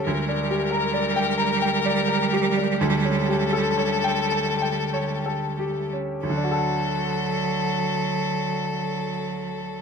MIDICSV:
0, 0, Header, 1, 4, 480
1, 0, Start_track
1, 0, Key_signature, 2, "major"
1, 0, Tempo, 863309
1, 31, Time_signature, 3, 2, 24, 8
1, 512, Tempo, 928793
1, 992, Tempo, 967742
1, 1952, Tempo, 1149425
1, 2432, Tempo, 1310044
1, 2912, Tempo, 1209677
1, 4329, End_track
2, 0, Start_track
2, 0, Title_t, "Grand piano"
2, 0, Program_c, 0, 0
2, 0, Control_c, 0, 64, 127
2, 39, Note_on_c, 0, 38, 92
2, 41, Control_c, 0, 64, 0
2, 127, Control_c, 0, 64, 127
2, 158, Note_on_c, 0, 62, 68
2, 278, Note_on_c, 0, 67, 76
2, 344, Note_off_c, 0, 62, 0
2, 392, Note_on_c, 0, 70, 78
2, 467, Note_off_c, 0, 67, 0
2, 519, Note_on_c, 0, 74, 81
2, 584, Note_off_c, 0, 70, 0
2, 636, Note_on_c, 0, 79, 81
2, 704, Note_off_c, 0, 74, 0
2, 748, Note_on_c, 0, 82, 88
2, 825, Note_off_c, 0, 79, 0
2, 873, Note_on_c, 0, 79, 82
2, 943, Note_off_c, 0, 82, 0
2, 994, Note_on_c, 0, 74, 86
2, 1063, Note_off_c, 0, 79, 0
2, 1108, Note_on_c, 0, 70, 80
2, 1181, Note_off_c, 0, 74, 0
2, 1227, Note_on_c, 0, 67, 82
2, 1298, Note_off_c, 0, 70, 0
2, 1348, Note_on_c, 0, 62, 70
2, 1417, Note_off_c, 0, 67, 0
2, 1449, Note_off_c, 0, 38, 0
2, 1466, Note_off_c, 0, 62, 0
2, 1468, Note_on_c, 0, 38, 103
2, 1476, Control_c, 0, 64, 0
2, 1582, Control_c, 0, 64, 127
2, 1586, Note_on_c, 0, 61, 71
2, 1704, Note_on_c, 0, 67, 75
2, 1777, Note_off_c, 0, 61, 0
2, 1825, Note_on_c, 0, 69, 79
2, 1901, Note_off_c, 0, 67, 0
2, 1947, Note_on_c, 0, 73, 79
2, 2018, Note_off_c, 0, 69, 0
2, 2059, Note_on_c, 0, 79, 84
2, 2130, Note_off_c, 0, 73, 0
2, 2175, Note_on_c, 0, 81, 82
2, 2251, Note_off_c, 0, 79, 0
2, 2299, Note_on_c, 0, 79, 73
2, 2377, Note_off_c, 0, 81, 0
2, 2432, Note_on_c, 0, 73, 79
2, 2500, Note_off_c, 0, 79, 0
2, 2550, Note_on_c, 0, 69, 65
2, 2624, Note_off_c, 0, 73, 0
2, 2672, Note_on_c, 0, 67, 69
2, 2750, Note_off_c, 0, 69, 0
2, 2797, Note_on_c, 0, 61, 61
2, 2866, Note_off_c, 0, 67, 0
2, 2898, Note_off_c, 0, 38, 0
2, 2907, Note_on_c, 0, 38, 76
2, 2911, Note_off_c, 0, 61, 0
2, 2922, Control_c, 0, 64, 0
2, 2933, Note_on_c, 0, 50, 75
2, 2961, Note_on_c, 0, 62, 69
2, 2990, Note_on_c, 0, 66, 71
2, 3011, Control_c, 0, 64, 127
2, 3018, Note_on_c, 0, 69, 70
2, 3044, Note_on_c, 0, 78, 72
2, 4329, Note_off_c, 0, 38, 0
2, 4329, Note_off_c, 0, 50, 0
2, 4329, Note_off_c, 0, 62, 0
2, 4329, Note_off_c, 0, 66, 0
2, 4329, Note_off_c, 0, 69, 0
2, 4329, Note_off_c, 0, 78, 0
2, 4329, End_track
3, 0, Start_track
3, 0, Title_t, "Violin"
3, 0, Program_c, 1, 40
3, 28, Note_on_c, 1, 70, 96
3, 1444, Note_off_c, 1, 70, 0
3, 1465, Note_on_c, 1, 69, 101
3, 2790, Note_off_c, 1, 69, 0
3, 2909, Note_on_c, 1, 69, 89
3, 4329, Note_off_c, 1, 69, 0
3, 4329, End_track
4, 0, Start_track
4, 0, Title_t, "Cello"
4, 0, Program_c, 2, 42
4, 29, Note_on_c, 2, 55, 103
4, 2789, Note_off_c, 2, 55, 0
4, 2909, Note_on_c, 2, 54, 89
4, 4329, Note_off_c, 2, 54, 0
4, 4329, End_track
0, 0, End_of_file